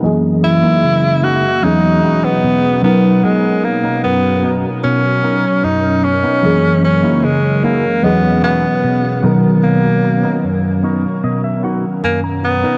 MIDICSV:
0, 0, Header, 1, 6, 480
1, 0, Start_track
1, 0, Key_signature, 5, "major"
1, 0, Tempo, 800000
1, 23, Time_signature, 4, 2, 24, 8
1, 7666, End_track
2, 0, Start_track
2, 0, Title_t, "Clean electric guitar"
2, 0, Program_c, 0, 27
2, 22, Note_on_c, 0, 42, 80
2, 377, Note_on_c, 0, 58, 77
2, 380, Note_on_c, 0, 63, 69
2, 383, Note_off_c, 0, 42, 0
2, 384, Note_on_c, 0, 66, 68
2, 385, Note_on_c, 0, 64, 63
2, 388, Note_on_c, 0, 70, 82
2, 499, Note_off_c, 0, 58, 0
2, 501, Note_off_c, 0, 63, 0
2, 502, Note_off_c, 0, 64, 0
2, 503, Note_off_c, 0, 66, 0
2, 503, Note_on_c, 0, 49, 81
2, 505, Note_off_c, 0, 70, 0
2, 735, Note_on_c, 0, 58, 83
2, 738, Note_on_c, 0, 63, 74
2, 742, Note_on_c, 0, 64, 62
2, 743, Note_on_c, 0, 66, 70
2, 748, Note_on_c, 0, 68, 71
2, 860, Note_off_c, 0, 58, 0
2, 862, Note_off_c, 0, 63, 0
2, 863, Note_off_c, 0, 64, 0
2, 864, Note_off_c, 0, 49, 0
2, 864, Note_off_c, 0, 66, 0
2, 866, Note_off_c, 0, 68, 0
2, 983, Note_on_c, 0, 40, 77
2, 1217, Note_on_c, 0, 61, 81
2, 1220, Note_on_c, 0, 63, 74
2, 1223, Note_on_c, 0, 66, 74
2, 1225, Note_on_c, 0, 64, 66
2, 1227, Note_on_c, 0, 68, 87
2, 1341, Note_off_c, 0, 61, 0
2, 1342, Note_off_c, 0, 63, 0
2, 1344, Note_off_c, 0, 40, 0
2, 1344, Note_off_c, 0, 64, 0
2, 1345, Note_off_c, 0, 66, 0
2, 1346, Note_off_c, 0, 68, 0
2, 1461, Note_on_c, 0, 47, 83
2, 1697, Note_on_c, 0, 59, 86
2, 1702, Note_on_c, 0, 63, 77
2, 1708, Note_on_c, 0, 70, 93
2, 1823, Note_off_c, 0, 47, 0
2, 1944, Note_on_c, 0, 47, 83
2, 2085, Note_off_c, 0, 59, 0
2, 2087, Note_off_c, 0, 63, 0
2, 2090, Note_off_c, 0, 70, 0
2, 2298, Note_on_c, 0, 59, 77
2, 2303, Note_on_c, 0, 63, 74
2, 2304, Note_off_c, 0, 47, 0
2, 2309, Note_on_c, 0, 70, 83
2, 2420, Note_off_c, 0, 59, 0
2, 2422, Note_off_c, 0, 63, 0
2, 2423, Note_on_c, 0, 42, 85
2, 2425, Note_off_c, 0, 70, 0
2, 2658, Note_on_c, 0, 59, 78
2, 2663, Note_on_c, 0, 63, 74
2, 2668, Note_on_c, 0, 70, 91
2, 2781, Note_off_c, 0, 59, 0
2, 2784, Note_off_c, 0, 42, 0
2, 2784, Note_off_c, 0, 63, 0
2, 2787, Note_off_c, 0, 70, 0
2, 2904, Note_on_c, 0, 47, 80
2, 3139, Note_on_c, 0, 59, 83
2, 3145, Note_on_c, 0, 63, 74
2, 3150, Note_on_c, 0, 70, 91
2, 3262, Note_off_c, 0, 59, 0
2, 3264, Note_off_c, 0, 47, 0
2, 3265, Note_off_c, 0, 63, 0
2, 3267, Note_off_c, 0, 70, 0
2, 3383, Note_on_c, 0, 42, 78
2, 3740, Note_on_c, 0, 59, 77
2, 3744, Note_off_c, 0, 42, 0
2, 3745, Note_on_c, 0, 63, 68
2, 3750, Note_on_c, 0, 70, 83
2, 3861, Note_off_c, 0, 59, 0
2, 3863, Note_off_c, 0, 63, 0
2, 3864, Note_on_c, 0, 42, 82
2, 3866, Note_off_c, 0, 70, 0
2, 4219, Note_on_c, 0, 58, 80
2, 4221, Note_on_c, 0, 63, 70
2, 4224, Note_off_c, 0, 42, 0
2, 4224, Note_on_c, 0, 64, 72
2, 4227, Note_on_c, 0, 66, 73
2, 4230, Note_on_c, 0, 70, 86
2, 4340, Note_off_c, 0, 58, 0
2, 4342, Note_off_c, 0, 63, 0
2, 4342, Note_on_c, 0, 49, 83
2, 4343, Note_off_c, 0, 64, 0
2, 4344, Note_off_c, 0, 66, 0
2, 4346, Note_off_c, 0, 70, 0
2, 4577, Note_on_c, 0, 58, 82
2, 4580, Note_on_c, 0, 63, 70
2, 4585, Note_on_c, 0, 64, 62
2, 4586, Note_on_c, 0, 66, 73
2, 4588, Note_on_c, 0, 68, 85
2, 4701, Note_off_c, 0, 58, 0
2, 4703, Note_off_c, 0, 49, 0
2, 4703, Note_off_c, 0, 63, 0
2, 4704, Note_off_c, 0, 64, 0
2, 4705, Note_off_c, 0, 66, 0
2, 4707, Note_off_c, 0, 68, 0
2, 4823, Note_on_c, 0, 40, 82
2, 5056, Note_on_c, 0, 61, 84
2, 5060, Note_on_c, 0, 63, 66
2, 5061, Note_on_c, 0, 64, 77
2, 5064, Note_on_c, 0, 66, 78
2, 5066, Note_on_c, 0, 68, 92
2, 5181, Note_off_c, 0, 61, 0
2, 5182, Note_off_c, 0, 63, 0
2, 5183, Note_off_c, 0, 64, 0
2, 5184, Note_off_c, 0, 40, 0
2, 5184, Note_off_c, 0, 66, 0
2, 5186, Note_off_c, 0, 68, 0
2, 5301, Note_on_c, 0, 47, 79
2, 5535, Note_on_c, 0, 59, 84
2, 5541, Note_on_c, 0, 63, 78
2, 5546, Note_on_c, 0, 70, 98
2, 5663, Note_off_c, 0, 47, 0
2, 5781, Note_on_c, 0, 47, 81
2, 5924, Note_off_c, 0, 59, 0
2, 5927, Note_off_c, 0, 63, 0
2, 5929, Note_off_c, 0, 70, 0
2, 6139, Note_on_c, 0, 59, 80
2, 6143, Note_off_c, 0, 47, 0
2, 6144, Note_on_c, 0, 63, 72
2, 6149, Note_on_c, 0, 70, 85
2, 6260, Note_off_c, 0, 59, 0
2, 6262, Note_on_c, 0, 42, 88
2, 6263, Note_off_c, 0, 63, 0
2, 6266, Note_off_c, 0, 70, 0
2, 6497, Note_on_c, 0, 59, 80
2, 6501, Note_on_c, 0, 63, 75
2, 6505, Note_on_c, 0, 73, 59
2, 6507, Note_on_c, 0, 70, 90
2, 6621, Note_off_c, 0, 59, 0
2, 6623, Note_off_c, 0, 42, 0
2, 6624, Note_off_c, 0, 63, 0
2, 6626, Note_off_c, 0, 70, 0
2, 6726, Note_off_c, 0, 73, 0
2, 6741, Note_on_c, 0, 47, 79
2, 6744, Note_on_c, 0, 75, 61
2, 6855, Note_off_c, 0, 75, 0
2, 6864, Note_on_c, 0, 76, 71
2, 6974, Note_off_c, 0, 76, 0
2, 6977, Note_on_c, 0, 59, 84
2, 6982, Note_on_c, 0, 63, 74
2, 6986, Note_on_c, 0, 78, 58
2, 6987, Note_on_c, 0, 66, 90
2, 7101, Note_off_c, 0, 59, 0
2, 7103, Note_off_c, 0, 47, 0
2, 7104, Note_off_c, 0, 63, 0
2, 7106, Note_off_c, 0, 66, 0
2, 7206, Note_off_c, 0, 78, 0
2, 7221, Note_on_c, 0, 42, 86
2, 7225, Note_on_c, 0, 80, 63
2, 7335, Note_off_c, 0, 80, 0
2, 7343, Note_on_c, 0, 82, 68
2, 7577, Note_on_c, 0, 59, 73
2, 7582, Note_on_c, 0, 63, 69
2, 7584, Note_off_c, 0, 42, 0
2, 7587, Note_on_c, 0, 70, 86
2, 7666, Note_off_c, 0, 59, 0
2, 7666, Note_off_c, 0, 63, 0
2, 7666, Note_off_c, 0, 70, 0
2, 7666, Note_off_c, 0, 82, 0
2, 7666, End_track
3, 0, Start_track
3, 0, Title_t, "Tenor saxophone"
3, 0, Program_c, 1, 66
3, 264, Note_on_c, 1, 64, 105
3, 742, Note_on_c, 1, 66, 94
3, 751, Note_off_c, 1, 64, 0
3, 982, Note_on_c, 1, 63, 105
3, 991, Note_off_c, 1, 66, 0
3, 1344, Note_on_c, 1, 59, 95
3, 1353, Note_off_c, 1, 63, 0
3, 1700, Note_off_c, 1, 59, 0
3, 1703, Note_on_c, 1, 59, 93
3, 1944, Note_on_c, 1, 56, 95
3, 1953, Note_off_c, 1, 59, 0
3, 2184, Note_on_c, 1, 58, 90
3, 2193, Note_off_c, 1, 56, 0
3, 2420, Note_off_c, 1, 58, 0
3, 2423, Note_on_c, 1, 59, 90
3, 2720, Note_off_c, 1, 59, 0
3, 2904, Note_on_c, 1, 61, 101
3, 3383, Note_on_c, 1, 63, 96
3, 3392, Note_off_c, 1, 61, 0
3, 3622, Note_on_c, 1, 61, 101
3, 3631, Note_off_c, 1, 63, 0
3, 4102, Note_off_c, 1, 61, 0
3, 4106, Note_on_c, 1, 61, 89
3, 4344, Note_on_c, 1, 56, 84
3, 4353, Note_off_c, 1, 61, 0
3, 4583, Note_on_c, 1, 58, 87
3, 4592, Note_off_c, 1, 56, 0
3, 4823, Note_on_c, 1, 59, 91
3, 4832, Note_off_c, 1, 58, 0
3, 5058, Note_off_c, 1, 59, 0
3, 5061, Note_on_c, 1, 59, 93
3, 5597, Note_off_c, 1, 59, 0
3, 5782, Note_on_c, 1, 58, 83
3, 6238, Note_off_c, 1, 58, 0
3, 7225, Note_on_c, 1, 58, 79
3, 7321, Note_off_c, 1, 58, 0
3, 7466, Note_on_c, 1, 59, 86
3, 7666, Note_off_c, 1, 59, 0
3, 7666, End_track
4, 0, Start_track
4, 0, Title_t, "FM electric piano"
4, 0, Program_c, 2, 5
4, 0, Control_c, 2, 64, 127
4, 14, Note_on_c, 2, 54, 72
4, 17, Note_on_c, 2, 58, 72
4, 23, Note_on_c, 2, 75, 70
4, 28, Note_on_c, 2, 52, 72
4, 31, Control_c, 2, 64, 0
4, 32, Note_on_c, 2, 68, 83
4, 123, Control_c, 2, 64, 127
4, 931, Note_off_c, 2, 54, 0
4, 933, Note_off_c, 2, 58, 0
4, 935, Note_off_c, 2, 75, 0
4, 938, Note_off_c, 2, 52, 0
4, 940, Note_off_c, 2, 68, 0
4, 974, Note_on_c, 2, 54, 72
4, 979, Note_on_c, 2, 61, 69
4, 983, Note_on_c, 2, 75, 63
4, 987, Note_on_c, 2, 52, 66
4, 989, Control_c, 2, 64, 0
4, 992, Note_on_c, 2, 68, 80
4, 1111, Control_c, 2, 64, 127
4, 1651, Note_off_c, 2, 54, 0
4, 1653, Note_off_c, 2, 61, 0
4, 1656, Note_off_c, 2, 75, 0
4, 1657, Note_off_c, 2, 52, 0
4, 1660, Note_off_c, 2, 68, 0
4, 1694, Note_on_c, 2, 54, 79
4, 1701, Note_on_c, 2, 47, 76
4, 1707, Note_on_c, 2, 63, 73
4, 1711, Control_c, 2, 64, 0
4, 1713, Note_on_c, 2, 70, 91
4, 1826, Control_c, 2, 64, 127
4, 3811, Note_off_c, 2, 54, 0
4, 3814, Note_off_c, 2, 47, 0
4, 3817, Note_off_c, 2, 63, 0
4, 3820, Note_off_c, 2, 70, 0
4, 3855, Note_on_c, 2, 54, 74
4, 3860, Note_on_c, 2, 58, 72
4, 3864, Note_on_c, 2, 75, 69
4, 3868, Note_on_c, 2, 52, 69
4, 3871, Control_c, 2, 64, 0
4, 3873, Note_on_c, 2, 68, 86
4, 3986, Control_c, 2, 64, 127
4, 4771, Note_off_c, 2, 54, 0
4, 4774, Note_off_c, 2, 58, 0
4, 4776, Note_off_c, 2, 75, 0
4, 4778, Note_off_c, 2, 52, 0
4, 4780, Note_off_c, 2, 68, 0
4, 4815, Note_on_c, 2, 54, 70
4, 4819, Note_on_c, 2, 61, 66
4, 4823, Note_on_c, 2, 75, 68
4, 4827, Note_on_c, 2, 52, 63
4, 4831, Note_on_c, 2, 68, 78
4, 4832, Control_c, 2, 64, 0
4, 4921, Control_c, 2, 64, 127
4, 5491, Note_off_c, 2, 54, 0
4, 5493, Note_off_c, 2, 61, 0
4, 5495, Note_off_c, 2, 75, 0
4, 5498, Note_off_c, 2, 52, 0
4, 5499, Note_off_c, 2, 68, 0
4, 5536, Note_on_c, 2, 54, 82
4, 5542, Note_on_c, 2, 47, 78
4, 5548, Note_on_c, 2, 51, 73
4, 5551, Control_c, 2, 64, 0
4, 5555, Note_on_c, 2, 70, 96
4, 5668, Control_c, 2, 64, 127
4, 7652, Note_off_c, 2, 54, 0
4, 7655, Note_off_c, 2, 47, 0
4, 7658, Note_off_c, 2, 51, 0
4, 7661, Note_off_c, 2, 70, 0
4, 7666, End_track
5, 0, Start_track
5, 0, Title_t, "String machine"
5, 0, Program_c, 3, 50
5, 23, Note_on_c, 3, 42, 82
5, 24, Note_on_c, 3, 49, 72
5, 24, Note_on_c, 3, 52, 79
5, 24, Note_on_c, 3, 56, 76
5, 24, Note_on_c, 3, 58, 73
5, 24, Note_on_c, 3, 75, 93
5, 973, Note_off_c, 3, 42, 0
5, 974, Note_off_c, 3, 49, 0
5, 974, Note_off_c, 3, 52, 0
5, 974, Note_off_c, 3, 58, 0
5, 983, Note_on_c, 3, 40, 75
5, 983, Note_on_c, 3, 47, 69
5, 983, Note_on_c, 3, 61, 76
5, 984, Note_on_c, 3, 54, 70
5, 1687, Note_off_c, 3, 56, 0
5, 1687, Note_off_c, 3, 75, 0
5, 1696, Note_off_c, 3, 40, 0
5, 1696, Note_off_c, 3, 47, 0
5, 1696, Note_off_c, 3, 54, 0
5, 1704, Note_on_c, 3, 47, 77
5, 1704, Note_on_c, 3, 70, 73
5, 1705, Note_on_c, 3, 54, 73
5, 3839, Note_off_c, 3, 61, 0
5, 3842, Note_off_c, 3, 47, 0
5, 3842, Note_off_c, 3, 54, 0
5, 3864, Note_on_c, 3, 49, 77
5, 3864, Note_on_c, 3, 52, 75
5, 3864, Note_on_c, 3, 56, 74
5, 3865, Note_on_c, 3, 42, 83
5, 4799, Note_off_c, 3, 70, 0
5, 4814, Note_off_c, 3, 42, 0
5, 4814, Note_off_c, 3, 49, 0
5, 4814, Note_off_c, 3, 52, 0
5, 4822, Note_on_c, 3, 54, 75
5, 4822, Note_on_c, 3, 61, 74
5, 4823, Note_on_c, 3, 40, 78
5, 4823, Note_on_c, 3, 47, 70
5, 5527, Note_off_c, 3, 56, 0
5, 5535, Note_off_c, 3, 40, 0
5, 5535, Note_off_c, 3, 47, 0
5, 5543, Note_on_c, 3, 70, 69
5, 5544, Note_on_c, 3, 47, 84
5, 7666, Note_off_c, 3, 47, 0
5, 7666, Note_off_c, 3, 54, 0
5, 7666, Note_off_c, 3, 61, 0
5, 7666, Note_off_c, 3, 70, 0
5, 7666, End_track
6, 0, Start_track
6, 0, Title_t, "Muted clean electric guitar strokes"
6, 258, Note_on_c, 9, 29, 79
6, 318, Note_off_c, 9, 29, 0
6, 2179, Note_on_c, 9, 29, 84
6, 2239, Note_off_c, 9, 29, 0
6, 3618, Note_on_c, 9, 29, 81
6, 3678, Note_off_c, 9, 29, 0
6, 4098, Note_on_c, 9, 29, 80
6, 4158, Note_off_c, 9, 29, 0
6, 6017, Note_on_c, 9, 29, 82
6, 6077, Note_off_c, 9, 29, 0
6, 7457, Note_on_c, 9, 29, 81
6, 7517, Note_off_c, 9, 29, 0
6, 7666, End_track
0, 0, End_of_file